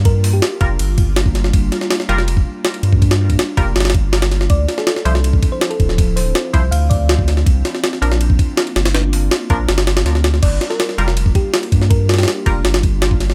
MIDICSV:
0, 0, Header, 1, 6, 480
1, 0, Start_track
1, 0, Tempo, 370370
1, 70, Time_signature, 4, 2, 24, 8
1, 17291, End_track
2, 0, Start_track
2, 0, Title_t, "Synth pluck"
2, 0, Program_c, 0, 84
2, 68, Note_on_c, 0, 70, 100
2, 405, Note_off_c, 0, 70, 0
2, 431, Note_on_c, 0, 67, 92
2, 911, Note_off_c, 0, 67, 0
2, 5831, Note_on_c, 0, 74, 101
2, 6119, Note_off_c, 0, 74, 0
2, 6192, Note_on_c, 0, 69, 96
2, 6479, Note_off_c, 0, 69, 0
2, 7155, Note_on_c, 0, 72, 88
2, 7368, Note_off_c, 0, 72, 0
2, 7390, Note_on_c, 0, 69, 88
2, 7678, Note_off_c, 0, 69, 0
2, 7987, Note_on_c, 0, 72, 88
2, 8277, Note_off_c, 0, 72, 0
2, 8700, Note_on_c, 0, 77, 90
2, 8921, Note_off_c, 0, 77, 0
2, 8938, Note_on_c, 0, 74, 89
2, 9424, Note_off_c, 0, 74, 0
2, 13513, Note_on_c, 0, 74, 97
2, 13800, Note_off_c, 0, 74, 0
2, 13867, Note_on_c, 0, 70, 92
2, 14157, Note_off_c, 0, 70, 0
2, 14714, Note_on_c, 0, 67, 89
2, 15000, Note_off_c, 0, 67, 0
2, 15425, Note_on_c, 0, 70, 99
2, 15764, Note_off_c, 0, 70, 0
2, 15789, Note_on_c, 0, 67, 93
2, 16269, Note_off_c, 0, 67, 0
2, 17291, End_track
3, 0, Start_track
3, 0, Title_t, "Synth stab"
3, 0, Program_c, 1, 62
3, 786, Note_on_c, 1, 55, 85
3, 787, Note_on_c, 1, 65, 74
3, 787, Note_on_c, 1, 70, 95
3, 901, Note_off_c, 1, 55, 0
3, 901, Note_off_c, 1, 70, 0
3, 902, Note_off_c, 1, 65, 0
3, 2706, Note_on_c, 1, 55, 88
3, 2706, Note_on_c, 1, 65, 82
3, 2706, Note_on_c, 1, 70, 97
3, 2821, Note_off_c, 1, 55, 0
3, 2821, Note_off_c, 1, 65, 0
3, 2821, Note_off_c, 1, 70, 0
3, 4629, Note_on_c, 1, 55, 90
3, 4630, Note_on_c, 1, 65, 75
3, 4630, Note_on_c, 1, 70, 94
3, 4742, Note_off_c, 1, 55, 0
3, 4743, Note_off_c, 1, 65, 0
3, 4743, Note_off_c, 1, 70, 0
3, 6548, Note_on_c, 1, 64, 78
3, 6548, Note_on_c, 1, 72, 92
3, 6549, Note_on_c, 1, 53, 84
3, 6662, Note_off_c, 1, 53, 0
3, 6662, Note_off_c, 1, 64, 0
3, 6662, Note_off_c, 1, 72, 0
3, 8469, Note_on_c, 1, 53, 85
3, 8469, Note_on_c, 1, 64, 77
3, 8470, Note_on_c, 1, 72, 97
3, 8582, Note_off_c, 1, 53, 0
3, 8583, Note_off_c, 1, 64, 0
3, 8583, Note_off_c, 1, 72, 0
3, 10391, Note_on_c, 1, 53, 89
3, 10391, Note_on_c, 1, 62, 79
3, 10392, Note_on_c, 1, 70, 97
3, 10503, Note_off_c, 1, 62, 0
3, 10504, Note_off_c, 1, 53, 0
3, 10504, Note_off_c, 1, 70, 0
3, 12313, Note_on_c, 1, 53, 87
3, 12313, Note_on_c, 1, 62, 82
3, 12313, Note_on_c, 1, 70, 96
3, 12424, Note_off_c, 1, 62, 0
3, 12425, Note_off_c, 1, 53, 0
3, 12425, Note_off_c, 1, 70, 0
3, 14232, Note_on_c, 1, 55, 89
3, 14232, Note_on_c, 1, 65, 77
3, 14233, Note_on_c, 1, 70, 95
3, 14344, Note_off_c, 1, 55, 0
3, 14344, Note_off_c, 1, 65, 0
3, 14345, Note_off_c, 1, 70, 0
3, 16149, Note_on_c, 1, 55, 85
3, 16149, Note_on_c, 1, 70, 97
3, 16150, Note_on_c, 1, 65, 77
3, 16263, Note_off_c, 1, 55, 0
3, 16263, Note_off_c, 1, 65, 0
3, 16263, Note_off_c, 1, 70, 0
3, 17291, End_track
4, 0, Start_track
4, 0, Title_t, "Ambient pad"
4, 0, Program_c, 2, 92
4, 0, Note_on_c, 2, 55, 85
4, 0, Note_on_c, 2, 58, 77
4, 0, Note_on_c, 2, 62, 80
4, 0, Note_on_c, 2, 65, 98
4, 5779, Note_off_c, 2, 55, 0
4, 5779, Note_off_c, 2, 65, 0
4, 5781, Note_off_c, 2, 58, 0
4, 5823, Note_on_c, 2, 64, 90
4, 5827, Note_on_c, 2, 53, 89
4, 5830, Note_on_c, 2, 60, 77
4, 9620, Note_off_c, 2, 62, 0
4, 9628, Note_off_c, 2, 64, 0
4, 9630, Note_off_c, 2, 53, 0
4, 9665, Note_on_c, 2, 58, 86
4, 9667, Note_on_c, 2, 62, 79
4, 9669, Note_on_c, 2, 65, 97
4, 13458, Note_off_c, 2, 60, 0
4, 13469, Note_off_c, 2, 58, 0
4, 13470, Note_off_c, 2, 62, 0
4, 13471, Note_off_c, 2, 65, 0
4, 13510, Note_on_c, 2, 62, 79
4, 13512, Note_on_c, 2, 58, 81
4, 13513, Note_on_c, 2, 65, 93
4, 13514, Note_on_c, 2, 55, 84
4, 17291, Note_off_c, 2, 55, 0
4, 17291, Note_off_c, 2, 58, 0
4, 17291, Note_off_c, 2, 62, 0
4, 17291, Note_off_c, 2, 65, 0
4, 17291, End_track
5, 0, Start_track
5, 0, Title_t, "Sub bass"
5, 0, Program_c, 3, 38
5, 0, Note_on_c, 3, 43, 86
5, 531, Note_off_c, 3, 43, 0
5, 788, Note_on_c, 3, 29, 99
5, 1005, Note_off_c, 3, 29, 0
5, 1030, Note_on_c, 3, 31, 99
5, 1971, Note_off_c, 3, 31, 0
5, 1988, Note_on_c, 3, 31, 99
5, 2205, Note_off_c, 3, 31, 0
5, 2707, Note_on_c, 3, 29, 98
5, 3169, Note_off_c, 3, 29, 0
5, 3667, Note_on_c, 3, 43, 93
5, 4369, Note_off_c, 3, 43, 0
5, 4631, Note_on_c, 3, 29, 96
5, 4847, Note_off_c, 3, 29, 0
5, 4867, Note_on_c, 3, 31, 105
5, 5809, Note_off_c, 3, 31, 0
5, 5832, Note_on_c, 3, 38, 102
5, 6047, Note_off_c, 3, 38, 0
5, 6549, Note_on_c, 3, 36, 94
5, 7010, Note_off_c, 3, 36, 0
5, 7511, Note_on_c, 3, 26, 92
5, 8211, Note_off_c, 3, 26, 0
5, 8473, Note_on_c, 3, 36, 99
5, 8687, Note_off_c, 3, 36, 0
5, 8707, Note_on_c, 3, 38, 102
5, 9649, Note_off_c, 3, 38, 0
5, 9674, Note_on_c, 3, 36, 100
5, 9888, Note_off_c, 3, 36, 0
5, 10390, Note_on_c, 3, 34, 101
5, 10851, Note_off_c, 3, 34, 0
5, 11353, Note_on_c, 3, 31, 88
5, 12052, Note_off_c, 3, 31, 0
5, 12312, Note_on_c, 3, 34, 100
5, 12527, Note_off_c, 3, 34, 0
5, 12557, Note_on_c, 3, 31, 90
5, 13014, Note_off_c, 3, 31, 0
5, 13029, Note_on_c, 3, 38, 84
5, 13490, Note_off_c, 3, 38, 0
5, 13513, Note_on_c, 3, 31, 105
5, 13727, Note_off_c, 3, 31, 0
5, 14230, Note_on_c, 3, 29, 102
5, 14691, Note_off_c, 3, 29, 0
5, 15191, Note_on_c, 3, 43, 93
5, 15891, Note_off_c, 3, 43, 0
5, 16151, Note_on_c, 3, 29, 95
5, 16366, Note_off_c, 3, 29, 0
5, 16387, Note_on_c, 3, 31, 98
5, 17291, Note_off_c, 3, 31, 0
5, 17291, End_track
6, 0, Start_track
6, 0, Title_t, "Drums"
6, 66, Note_on_c, 9, 51, 94
6, 70, Note_on_c, 9, 36, 115
6, 196, Note_off_c, 9, 51, 0
6, 199, Note_off_c, 9, 36, 0
6, 310, Note_on_c, 9, 46, 81
6, 440, Note_off_c, 9, 46, 0
6, 547, Note_on_c, 9, 38, 121
6, 547, Note_on_c, 9, 51, 89
6, 677, Note_off_c, 9, 38, 0
6, 677, Note_off_c, 9, 51, 0
6, 786, Note_on_c, 9, 51, 68
6, 789, Note_on_c, 9, 36, 101
6, 916, Note_off_c, 9, 51, 0
6, 918, Note_off_c, 9, 36, 0
6, 1028, Note_on_c, 9, 51, 98
6, 1158, Note_off_c, 9, 51, 0
6, 1267, Note_on_c, 9, 51, 71
6, 1268, Note_on_c, 9, 36, 94
6, 1396, Note_off_c, 9, 51, 0
6, 1398, Note_off_c, 9, 36, 0
6, 1509, Note_on_c, 9, 38, 113
6, 1509, Note_on_c, 9, 51, 90
6, 1629, Note_on_c, 9, 36, 93
6, 1638, Note_off_c, 9, 38, 0
6, 1638, Note_off_c, 9, 51, 0
6, 1750, Note_on_c, 9, 38, 37
6, 1750, Note_on_c, 9, 51, 72
6, 1759, Note_off_c, 9, 36, 0
6, 1870, Note_off_c, 9, 38, 0
6, 1870, Note_on_c, 9, 38, 46
6, 1879, Note_off_c, 9, 51, 0
6, 1989, Note_on_c, 9, 36, 113
6, 1989, Note_on_c, 9, 51, 91
6, 2000, Note_off_c, 9, 38, 0
6, 2119, Note_off_c, 9, 36, 0
6, 2119, Note_off_c, 9, 51, 0
6, 2230, Note_on_c, 9, 38, 56
6, 2230, Note_on_c, 9, 51, 71
6, 2349, Note_off_c, 9, 38, 0
6, 2349, Note_on_c, 9, 38, 52
6, 2360, Note_off_c, 9, 51, 0
6, 2469, Note_off_c, 9, 38, 0
6, 2469, Note_on_c, 9, 38, 112
6, 2469, Note_on_c, 9, 51, 91
6, 2590, Note_off_c, 9, 38, 0
6, 2590, Note_on_c, 9, 38, 48
6, 2598, Note_off_c, 9, 51, 0
6, 2711, Note_on_c, 9, 51, 67
6, 2720, Note_off_c, 9, 38, 0
6, 2831, Note_on_c, 9, 38, 57
6, 2840, Note_off_c, 9, 51, 0
6, 2953, Note_on_c, 9, 51, 92
6, 2961, Note_off_c, 9, 38, 0
6, 3070, Note_on_c, 9, 36, 99
6, 3082, Note_off_c, 9, 51, 0
6, 3200, Note_off_c, 9, 36, 0
6, 3429, Note_on_c, 9, 38, 118
6, 3429, Note_on_c, 9, 51, 90
6, 3551, Note_off_c, 9, 51, 0
6, 3551, Note_on_c, 9, 51, 44
6, 3559, Note_off_c, 9, 38, 0
6, 3670, Note_off_c, 9, 51, 0
6, 3670, Note_on_c, 9, 51, 79
6, 3791, Note_on_c, 9, 36, 91
6, 3799, Note_off_c, 9, 51, 0
6, 3911, Note_off_c, 9, 36, 0
6, 3911, Note_on_c, 9, 36, 89
6, 3914, Note_on_c, 9, 51, 64
6, 4032, Note_off_c, 9, 51, 0
6, 4032, Note_on_c, 9, 38, 107
6, 4032, Note_on_c, 9, 51, 79
6, 4041, Note_off_c, 9, 36, 0
6, 4161, Note_off_c, 9, 38, 0
6, 4161, Note_off_c, 9, 51, 0
6, 4272, Note_on_c, 9, 36, 81
6, 4273, Note_on_c, 9, 51, 56
6, 4394, Note_off_c, 9, 51, 0
6, 4394, Note_on_c, 9, 38, 113
6, 4394, Note_on_c, 9, 51, 92
6, 4401, Note_off_c, 9, 36, 0
6, 4524, Note_off_c, 9, 38, 0
6, 4524, Note_off_c, 9, 51, 0
6, 4630, Note_on_c, 9, 51, 71
6, 4631, Note_on_c, 9, 36, 101
6, 4760, Note_off_c, 9, 51, 0
6, 4761, Note_off_c, 9, 36, 0
6, 4870, Note_on_c, 9, 38, 96
6, 4870, Note_on_c, 9, 51, 72
6, 4931, Note_off_c, 9, 38, 0
6, 4931, Note_off_c, 9, 51, 0
6, 4931, Note_on_c, 9, 38, 93
6, 4931, Note_on_c, 9, 51, 74
6, 4990, Note_off_c, 9, 38, 0
6, 4990, Note_off_c, 9, 51, 0
6, 4990, Note_on_c, 9, 38, 90
6, 4990, Note_on_c, 9, 51, 68
6, 5051, Note_off_c, 9, 38, 0
6, 5051, Note_off_c, 9, 51, 0
6, 5051, Note_on_c, 9, 38, 95
6, 5051, Note_on_c, 9, 51, 72
6, 5111, Note_on_c, 9, 36, 101
6, 5113, Note_off_c, 9, 51, 0
6, 5113, Note_on_c, 9, 51, 70
6, 5180, Note_off_c, 9, 38, 0
6, 5241, Note_off_c, 9, 36, 0
6, 5243, Note_off_c, 9, 51, 0
6, 5350, Note_on_c, 9, 38, 101
6, 5350, Note_on_c, 9, 51, 78
6, 5472, Note_off_c, 9, 38, 0
6, 5472, Note_off_c, 9, 51, 0
6, 5472, Note_on_c, 9, 38, 106
6, 5472, Note_on_c, 9, 51, 81
6, 5592, Note_off_c, 9, 38, 0
6, 5592, Note_off_c, 9, 51, 0
6, 5592, Note_on_c, 9, 38, 37
6, 5592, Note_on_c, 9, 51, 65
6, 5713, Note_off_c, 9, 38, 0
6, 5713, Note_on_c, 9, 38, 48
6, 5722, Note_off_c, 9, 51, 0
6, 5828, Note_on_c, 9, 51, 89
6, 5831, Note_on_c, 9, 36, 117
6, 5843, Note_off_c, 9, 38, 0
6, 5958, Note_off_c, 9, 51, 0
6, 5961, Note_off_c, 9, 36, 0
6, 6072, Note_on_c, 9, 38, 57
6, 6072, Note_on_c, 9, 51, 66
6, 6192, Note_off_c, 9, 38, 0
6, 6192, Note_on_c, 9, 38, 53
6, 6202, Note_off_c, 9, 51, 0
6, 6309, Note_off_c, 9, 38, 0
6, 6309, Note_on_c, 9, 38, 115
6, 6309, Note_on_c, 9, 51, 92
6, 6433, Note_off_c, 9, 38, 0
6, 6433, Note_on_c, 9, 38, 49
6, 6439, Note_off_c, 9, 51, 0
6, 6551, Note_on_c, 9, 51, 69
6, 6563, Note_off_c, 9, 38, 0
6, 6676, Note_on_c, 9, 38, 60
6, 6681, Note_off_c, 9, 51, 0
6, 6793, Note_on_c, 9, 51, 94
6, 6805, Note_off_c, 9, 38, 0
6, 6912, Note_on_c, 9, 36, 96
6, 6923, Note_off_c, 9, 51, 0
6, 7031, Note_on_c, 9, 51, 68
6, 7032, Note_off_c, 9, 36, 0
6, 7032, Note_on_c, 9, 36, 94
6, 7161, Note_off_c, 9, 36, 0
6, 7161, Note_off_c, 9, 51, 0
6, 7275, Note_on_c, 9, 38, 120
6, 7275, Note_on_c, 9, 51, 87
6, 7396, Note_off_c, 9, 51, 0
6, 7396, Note_on_c, 9, 51, 44
6, 7405, Note_off_c, 9, 38, 0
6, 7513, Note_on_c, 9, 36, 97
6, 7514, Note_off_c, 9, 51, 0
6, 7514, Note_on_c, 9, 51, 65
6, 7636, Note_on_c, 9, 38, 40
6, 7643, Note_off_c, 9, 36, 0
6, 7644, Note_off_c, 9, 51, 0
6, 7753, Note_on_c, 9, 36, 113
6, 7756, Note_on_c, 9, 51, 93
6, 7766, Note_off_c, 9, 38, 0
6, 7883, Note_off_c, 9, 36, 0
6, 7885, Note_off_c, 9, 51, 0
6, 7993, Note_on_c, 9, 46, 78
6, 8123, Note_off_c, 9, 46, 0
6, 8232, Note_on_c, 9, 38, 118
6, 8232, Note_on_c, 9, 51, 88
6, 8361, Note_off_c, 9, 38, 0
6, 8361, Note_off_c, 9, 51, 0
6, 8472, Note_on_c, 9, 36, 95
6, 8472, Note_on_c, 9, 51, 69
6, 8602, Note_off_c, 9, 36, 0
6, 8602, Note_off_c, 9, 51, 0
6, 8712, Note_on_c, 9, 51, 96
6, 8842, Note_off_c, 9, 51, 0
6, 8951, Note_on_c, 9, 51, 71
6, 8952, Note_on_c, 9, 36, 98
6, 9080, Note_off_c, 9, 51, 0
6, 9081, Note_off_c, 9, 36, 0
6, 9192, Note_on_c, 9, 38, 118
6, 9192, Note_on_c, 9, 51, 87
6, 9313, Note_on_c, 9, 36, 100
6, 9322, Note_off_c, 9, 38, 0
6, 9322, Note_off_c, 9, 51, 0
6, 9433, Note_on_c, 9, 38, 37
6, 9433, Note_on_c, 9, 51, 67
6, 9443, Note_off_c, 9, 36, 0
6, 9554, Note_off_c, 9, 38, 0
6, 9554, Note_on_c, 9, 38, 46
6, 9563, Note_off_c, 9, 51, 0
6, 9674, Note_on_c, 9, 36, 121
6, 9676, Note_on_c, 9, 51, 95
6, 9684, Note_off_c, 9, 38, 0
6, 9804, Note_off_c, 9, 36, 0
6, 9805, Note_off_c, 9, 51, 0
6, 9914, Note_on_c, 9, 38, 55
6, 9914, Note_on_c, 9, 51, 67
6, 10039, Note_off_c, 9, 38, 0
6, 10039, Note_on_c, 9, 38, 51
6, 10044, Note_off_c, 9, 51, 0
6, 10155, Note_off_c, 9, 38, 0
6, 10155, Note_on_c, 9, 38, 114
6, 10155, Note_on_c, 9, 51, 90
6, 10278, Note_off_c, 9, 38, 0
6, 10278, Note_on_c, 9, 38, 49
6, 10285, Note_off_c, 9, 51, 0
6, 10399, Note_on_c, 9, 51, 72
6, 10408, Note_off_c, 9, 38, 0
6, 10517, Note_on_c, 9, 38, 60
6, 10528, Note_off_c, 9, 51, 0
6, 10636, Note_on_c, 9, 51, 93
6, 10647, Note_off_c, 9, 38, 0
6, 10754, Note_on_c, 9, 36, 99
6, 10765, Note_off_c, 9, 51, 0
6, 10874, Note_off_c, 9, 36, 0
6, 10874, Note_on_c, 9, 36, 94
6, 10875, Note_on_c, 9, 51, 68
6, 11004, Note_off_c, 9, 36, 0
6, 11004, Note_off_c, 9, 51, 0
6, 11112, Note_on_c, 9, 38, 121
6, 11112, Note_on_c, 9, 51, 93
6, 11235, Note_off_c, 9, 51, 0
6, 11235, Note_on_c, 9, 51, 45
6, 11241, Note_off_c, 9, 38, 0
6, 11354, Note_off_c, 9, 51, 0
6, 11354, Note_on_c, 9, 38, 101
6, 11354, Note_on_c, 9, 51, 80
6, 11476, Note_off_c, 9, 38, 0
6, 11476, Note_off_c, 9, 51, 0
6, 11476, Note_on_c, 9, 38, 102
6, 11476, Note_on_c, 9, 51, 81
6, 11593, Note_off_c, 9, 38, 0
6, 11593, Note_off_c, 9, 51, 0
6, 11593, Note_on_c, 9, 38, 110
6, 11593, Note_on_c, 9, 51, 83
6, 11722, Note_off_c, 9, 38, 0
6, 11722, Note_off_c, 9, 51, 0
6, 11832, Note_on_c, 9, 46, 81
6, 11962, Note_off_c, 9, 46, 0
6, 12071, Note_on_c, 9, 38, 118
6, 12071, Note_on_c, 9, 51, 86
6, 12200, Note_off_c, 9, 38, 0
6, 12200, Note_off_c, 9, 51, 0
6, 12311, Note_on_c, 9, 51, 66
6, 12313, Note_on_c, 9, 36, 98
6, 12440, Note_off_c, 9, 51, 0
6, 12442, Note_off_c, 9, 36, 0
6, 12552, Note_on_c, 9, 38, 112
6, 12552, Note_on_c, 9, 51, 82
6, 12672, Note_off_c, 9, 38, 0
6, 12672, Note_off_c, 9, 51, 0
6, 12672, Note_on_c, 9, 38, 105
6, 12672, Note_on_c, 9, 51, 84
6, 12794, Note_off_c, 9, 38, 0
6, 12794, Note_off_c, 9, 51, 0
6, 12794, Note_on_c, 9, 38, 104
6, 12794, Note_on_c, 9, 51, 77
6, 12917, Note_off_c, 9, 38, 0
6, 12917, Note_off_c, 9, 51, 0
6, 12917, Note_on_c, 9, 38, 104
6, 12917, Note_on_c, 9, 51, 78
6, 13036, Note_off_c, 9, 38, 0
6, 13036, Note_off_c, 9, 51, 0
6, 13036, Note_on_c, 9, 38, 52
6, 13036, Note_on_c, 9, 51, 62
6, 13157, Note_off_c, 9, 38, 0
6, 13157, Note_on_c, 9, 38, 51
6, 13165, Note_off_c, 9, 51, 0
6, 13274, Note_off_c, 9, 38, 0
6, 13274, Note_on_c, 9, 38, 100
6, 13274, Note_on_c, 9, 51, 76
6, 13398, Note_off_c, 9, 38, 0
6, 13398, Note_on_c, 9, 38, 44
6, 13403, Note_off_c, 9, 51, 0
6, 13512, Note_on_c, 9, 49, 93
6, 13512, Note_on_c, 9, 51, 87
6, 13513, Note_on_c, 9, 36, 113
6, 13527, Note_off_c, 9, 38, 0
6, 13641, Note_off_c, 9, 49, 0
6, 13641, Note_off_c, 9, 51, 0
6, 13642, Note_off_c, 9, 36, 0
6, 13753, Note_on_c, 9, 38, 55
6, 13753, Note_on_c, 9, 51, 69
6, 13874, Note_off_c, 9, 38, 0
6, 13874, Note_on_c, 9, 38, 54
6, 13882, Note_off_c, 9, 51, 0
6, 13993, Note_off_c, 9, 38, 0
6, 13993, Note_on_c, 9, 38, 110
6, 13993, Note_on_c, 9, 51, 90
6, 14115, Note_off_c, 9, 38, 0
6, 14115, Note_on_c, 9, 38, 47
6, 14123, Note_off_c, 9, 51, 0
6, 14235, Note_on_c, 9, 51, 70
6, 14244, Note_off_c, 9, 38, 0
6, 14357, Note_on_c, 9, 38, 56
6, 14365, Note_off_c, 9, 51, 0
6, 14473, Note_on_c, 9, 51, 94
6, 14486, Note_off_c, 9, 38, 0
6, 14592, Note_on_c, 9, 36, 99
6, 14603, Note_off_c, 9, 51, 0
6, 14711, Note_on_c, 9, 51, 70
6, 14712, Note_off_c, 9, 36, 0
6, 14712, Note_on_c, 9, 36, 93
6, 14840, Note_off_c, 9, 51, 0
6, 14841, Note_off_c, 9, 36, 0
6, 14950, Note_on_c, 9, 38, 121
6, 14950, Note_on_c, 9, 51, 89
6, 15072, Note_off_c, 9, 51, 0
6, 15072, Note_on_c, 9, 51, 45
6, 15080, Note_off_c, 9, 38, 0
6, 15190, Note_off_c, 9, 51, 0
6, 15190, Note_on_c, 9, 51, 70
6, 15191, Note_on_c, 9, 36, 97
6, 15312, Note_on_c, 9, 38, 39
6, 15320, Note_off_c, 9, 51, 0
6, 15321, Note_off_c, 9, 36, 0
6, 15429, Note_on_c, 9, 51, 94
6, 15431, Note_on_c, 9, 36, 117
6, 15442, Note_off_c, 9, 38, 0
6, 15559, Note_off_c, 9, 51, 0
6, 15561, Note_off_c, 9, 36, 0
6, 15672, Note_on_c, 9, 38, 93
6, 15672, Note_on_c, 9, 51, 67
6, 15730, Note_off_c, 9, 38, 0
6, 15730, Note_off_c, 9, 51, 0
6, 15730, Note_on_c, 9, 38, 86
6, 15730, Note_on_c, 9, 51, 67
6, 15791, Note_off_c, 9, 38, 0
6, 15791, Note_off_c, 9, 51, 0
6, 15791, Note_on_c, 9, 38, 83
6, 15791, Note_on_c, 9, 51, 65
6, 15853, Note_off_c, 9, 38, 0
6, 15853, Note_off_c, 9, 51, 0
6, 15853, Note_on_c, 9, 38, 83
6, 15853, Note_on_c, 9, 51, 64
6, 15912, Note_off_c, 9, 38, 0
6, 15912, Note_off_c, 9, 51, 0
6, 15912, Note_on_c, 9, 38, 115
6, 15912, Note_on_c, 9, 51, 88
6, 16041, Note_off_c, 9, 38, 0
6, 16041, Note_off_c, 9, 51, 0
6, 16150, Note_on_c, 9, 51, 72
6, 16152, Note_on_c, 9, 36, 96
6, 16280, Note_off_c, 9, 51, 0
6, 16281, Note_off_c, 9, 36, 0
6, 16390, Note_on_c, 9, 38, 117
6, 16390, Note_on_c, 9, 51, 87
6, 16512, Note_off_c, 9, 38, 0
6, 16512, Note_off_c, 9, 51, 0
6, 16512, Note_on_c, 9, 38, 108
6, 16512, Note_on_c, 9, 51, 84
6, 16632, Note_off_c, 9, 51, 0
6, 16632, Note_on_c, 9, 51, 69
6, 16633, Note_on_c, 9, 36, 96
6, 16642, Note_off_c, 9, 38, 0
6, 16761, Note_off_c, 9, 51, 0
6, 16762, Note_off_c, 9, 36, 0
6, 16872, Note_on_c, 9, 38, 124
6, 16872, Note_on_c, 9, 51, 89
6, 16992, Note_on_c, 9, 36, 90
6, 17002, Note_off_c, 9, 38, 0
6, 17002, Note_off_c, 9, 51, 0
6, 17113, Note_on_c, 9, 38, 38
6, 17113, Note_on_c, 9, 51, 70
6, 17122, Note_off_c, 9, 36, 0
6, 17232, Note_off_c, 9, 38, 0
6, 17232, Note_on_c, 9, 38, 47
6, 17243, Note_off_c, 9, 51, 0
6, 17291, Note_off_c, 9, 38, 0
6, 17291, End_track
0, 0, End_of_file